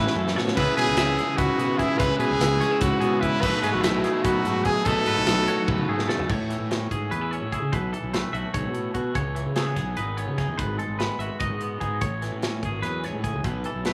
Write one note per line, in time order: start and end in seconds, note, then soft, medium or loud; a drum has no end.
0.00 0.16 G#2 medium
0.00 0.56 A2 medium
0.00 0.55 E3 medium
0.00 0.57 E3 medium
0.00 0.56 A3 medium
0.00 0.57 C#4 loud
0.00 0.58 C#4 medium
0.00 0.36 E4 medium
0.00 0.58 E4 medium
0.00 0.59 E4 medium
0.00 0.16 B4 medium
0.07 snare medium
0.15 0.35 F#2 medium
0.15 0.37 A2 medium
0.15 0.36 A4 medium
0.28 snare medium
0.36 0.57 B2 medium
0.36 0.57 C#5 medium
0.36 snare medium
0.48 snare medium
0.55 0.67 C#2 loud
0.55 1.97 C#3 medium
0.55 0.78 C#3 medium
0.55 0.76 E3 medium
0.55 1.98 G#3 medium
0.55 1.58 B3 medium
0.55 1.99 C#4 medium
0.55 2.01 E4 loud
0.55 0.75 B4 loud
0.55 kick loud
0.55 crash loud
0.59 0.96 E4 medium
0.59 1.99 G#4 medium
0.77 0.86 B2 medium
0.77 1.78 E3 medium
0.77 1.38 G#4 loud
0.77 0.97 B4 medium
0.77 closed hi-hat medium
0.87 0.96 C#2 medium
0.96 1.17 C#2 loud
0.96 1.17 E4 medium
0.96 1.18 E5 medium
0.96 snare loud
0.96 closed hi-hat loud
1.17 2.41 E4 medium
1.17 1.38 G#4 medium
1.17 snare soft
1.17 closed hi-hat medium
1.37 1.48 C#2 loud
1.37 1.96 G#2 medium
1.37 1.79 F#4 medium
1.37 1.78 B4 medium
1.37 kick loud
1.37 closed hi-hat medium
1.58 1.78 B2 medium
1.58 2.03 B3 medium
1.58 closed hi-hat medium
1.78 2.20 E3 medium
1.78 2.00 E4 medium
1.78 1.99 G#4 medium
1.78 kick medium
1.78 snare soft
1.78 closed hi-hat medium
1.98 2.09 C#2 loud
1.98 3.41 C#3 medium
1.98 2.20 C#3 medium
1.98 3.41 G#3 loud
1.98 3.42 C#4 loud
1.98 3.45 E4 medium
1.98 2.18 B4 loud
1.98 2.19 B4 medium
1.98 kick loud
1.98 closed hi-hat loud
2.19 2.29 B2 medium
2.19 3.23 E3 medium
2.19 2.83 G#4 loud
2.19 2.60 B4 medium
2.19 closed hi-hat medium
2.30 2.39 C#2 medium
2.39 2.59 C#2 loud
2.39 2.60 E4 medium
2.39 snare loud
2.39 closed hi-hat loud
2.61 2.71 C#4 medium
2.61 2.81 C#5 medium
2.61 snare soft
2.61 closed hi-hat medium
2.71 3.43 E4 medium
2.81 2.91 C#2 loud
2.81 3.41 G#2 medium
2.81 3.23 F#4 medium
2.81 3.02 B4 medium
2.81 kick loud
2.81 closed hi-hat loud
3.00 3.21 B2 medium
3.00 3.45 B3 medium
3.00 3.22 G#4 medium
3.00 closed hi-hat medium
3.21 3.45 E3 medium
3.21 3.43 E4 medium
3.21 3.42 B4 medium
3.21 kick medium
3.21 closed hi-hat medium
3.41 3.52 B1 medium
3.41 4.84 B2 medium
3.41 3.64 B2 medium
3.41 3.63 E3 medium
3.41 4.85 F#3 medium
3.41 4.87 A3 medium
3.41 4.86 D#4 loud
3.41 3.62 B4 loud
3.41 kick loud
3.41 crash loud
3.46 3.84 A3 medium
3.46 5.46 F#4 medium
3.62 3.73 G#2 medium
3.62 4.65 E3 medium
3.62 3.71 G#4 medium
3.62 3.83 B4 medium
3.62 closed hi-hat medium
3.72 3.83 B1 medium
3.72 3.83 F#4 medium
3.82 4.03 B1 loud
3.82 4.04 A3 medium
3.82 4.11 E4 medium
3.82 4.04 E5 medium
3.82 snare loud
3.82 closed hi-hat loud
4.04 4.46 A3 medium
4.04 4.25 G#4 medium
4.04 snare soft
4.04 closed hi-hat medium
4.12 4.24 E4 medium
4.23 4.34 B1 loud
4.23 4.84 F#2 medium
4.23 4.66 F#4 medium
4.23 4.66 B4 medium
4.23 kick loud
4.23 closed hi-hat loud
4.45 4.64 G#2 medium
4.45 5.87 A3 medium
4.45 snare soft
4.45 closed hi-hat medium
4.65 5.05 E3 medium
4.65 4.87 G#4 loud
4.65 4.87 G#4 medium
4.65 kick medium
4.65 closed hi-hat medium
4.85 4.96 B1 loud
4.85 6.27 B2 medium
4.85 5.06 B2 medium
4.85 6.28 F#3 medium
4.85 6.28 A3 loud
4.85 6.29 D#4 loud
4.85 5.88 A4 loud
4.85 5.06 B4 medium
4.85 kick loud
4.85 closed hi-hat medium
5.06 5.16 G#2 medium
5.06 6.06 E3 medium
5.06 5.48 B4 medium
5.06 closed hi-hat medium
5.17 5.26 B1 medium
5.26 5.46 B1 loud
5.26 snare loud
5.26 closed hi-hat medium
5.47 6.29 F#4 medium
5.47 5.68 C#5 medium
5.47 closed hi-hat medium
5.68 5.77 B1 medium
5.68 6.26 F#2 medium
5.68 5.88 B4 medium
5.68 kick loud
5.68 high tom medium
5.78 high tom medium
5.88 6.07 G#2 medium
5.88 6.70 A3 medium
5.88 6.09 G#4 medium
5.99 snare medium
6.07 6.49 E3 medium
6.07 6.30 A4 medium
6.07 snare medium
6.19 floor tom medium
6.29 7.70 A2 medium
6.29 6.58 A2 medium
6.29 6.70 C#5 medium
6.29 kick loud
6.29 crash medium
6.50 7.92 E3 medium
6.50 snare soft
6.50 closed hi-hat medium
6.60 6.89 A2 medium
6.71 7.10 C#4 medium
6.71 snare loud
6.71 closed hi-hat medium
6.91 7.10 G#2 medium
6.91 7.70 G#4 medium
6.91 kick medium
6.91 closed hi-hat medium
7.10 7.40 E2 medium
7.10 7.21 C#4 medium
7.10 7.31 B4 medium
7.10 closed hi-hat medium
7.21 7.52 E4 soft
7.31 7.76 C#4 medium
7.31 7.52 C#5 medium
7.31 closed hi-hat medium
7.42 7.61 A2 medium
7.52 8.36 E4 medium
7.52 7.72 G#4 medium
7.52 kick medium
7.52 closed hi-hat medium
7.62 7.72 C#3 medium
7.72 7.92 B1 medium
7.72 7.93 B2 medium
7.72 7.92 B4 medium
7.72 kick medium
7.72 closed hi-hat medium
7.92 9.34 E3 medium
7.92 8.13 A4 medium
7.92 closed hi-hat medium
8.03 8.22 B1 medium
8.13 9.16 A3 medium
8.13 8.34 B4 medium
8.13 snare loud
8.13 closed hi-hat medium
8.33 8.43 B1 medium
8.33 9.15 F#4 medium
8.33 8.53 E5 medium
8.33 closed hi-hat soft
8.53 8.64 B1 medium
8.53 8.73 G#2 medium
8.53 8.95 C#5 medium
8.53 kick loud
8.53 closed hi-hat medium
8.65 8.93 B2 medium
8.73 8.94 A2 medium
8.73 closed hi-hat medium
8.94 9.14 B2 medium
8.94 9.15 F#4 medium
8.94 kick medium
8.94 closed hi-hat medium
9.14 9.44 C#2 medium
9.14 9.35 C#3 medium
9.14 9.56 C#5 medium
9.14 kick medium
9.14 closed hi-hat medium
9.35 10.58 E3 medium
9.35 closed hi-hat medium
9.46 9.75 C#3 medium
9.56 9.66 A3 medium
9.56 9.97 G#4 medium
9.56 snare loud
9.56 closed hi-hat medium
9.66 10.16 B3 medium
9.76 9.96 B1 medium
9.76 11.21 G#4 medium
9.76 kick medium
9.76 snare soft
9.76 closed hi-hat medium
9.97 10.26 G#1 medium
9.97 10.37 D#4 medium
9.97 10.17 B4 medium
9.97 closed hi-hat medium
10.17 10.99 B3 soft
10.17 10.38 C#5 medium
10.17 closed hi-hat medium
10.27 10.47 C#3 medium
10.38 10.56 D#4 medium
10.38 10.58 G#4 medium
10.38 kick medium
10.38 snare soft
10.38 closed hi-hat medium
10.48 10.58 E2 medium
10.58 10.78 G#1 loud
10.58 11.98 G#2 medium
10.58 10.78 B4 medium
10.58 kick loud
10.58 closed hi-hat medium
10.78 11.98 G#3 medium
10.78 10.98 A4 medium
10.78 closed hi-hat medium
10.88 11.08 G#1 medium
10.99 11.62 B3 medium
10.99 11.19 B4 medium
10.99 snare loud
10.99 closed hi-hat medium
11.19 11.29 G#1 medium
11.19 12.02 F#4 medium
11.19 11.39 E5 medium
11.19 closed hi-hat medium
11.40 11.50 G#1 medium
11.40 11.80 D#4 medium
11.40 11.81 D#5 medium
11.40 kick loud
11.40 closed hi-hat medium
11.50 11.79 G#2 medium
11.61 12.04 B3 medium
11.61 closed hi-hat medium
11.80 12.00 G#2 medium
11.80 11.99 D#4 medium
11.80 12.01 G#4 medium
11.80 kick medium
11.80 closed hi-hat soft
12.01 12.30 A1 medium
12.01 12.83 A2 medium
12.01 12.42 C#5 medium
12.01 kick loud
12.01 closed hi-hat medium
12.22 13.65 E3 medium
12.22 snare soft
12.22 closed hi-hat medium
12.32 12.61 A2 medium
12.42 13.47 C#4 medium
12.42 snare loud
12.42 closed hi-hat medium
12.63 12.82 G#1 medium
12.63 13.43 G#4 medium
12.63 kick medium
12.63 closed hi-hat medium
12.82 13.11 E2 medium
12.82 13.04 F#2 medium
12.82 13.04 B4 medium
12.82 snare soft
12.82 closed hi-hat medium
13.04 13.24 G#2 medium
13.04 13.24 C#5 medium
13.04 snare soft
13.04 closed hi-hat medium
13.12 13.32 A2 medium
13.24 13.45 A2 medium
13.24 13.45 G#4 medium
13.24 kick medium
13.24 closed hi-hat medium
13.33 13.43 C#2 medium
13.44 13.63 B1 medium
13.44 13.65 B2 medium
13.44 13.65 B4 medium
13.44 kick loud
13.44 closed hi-hat medium
13.64 13.93 E3 medium
13.64 13.85 A4 medium
13.64 closed hi-hat medium
13.74 13.93 B1 medium
13.85 13.93 A3 medium
13.85 13.93 B4 medium
13.85 snare loud
13.85 closed hi-hat medium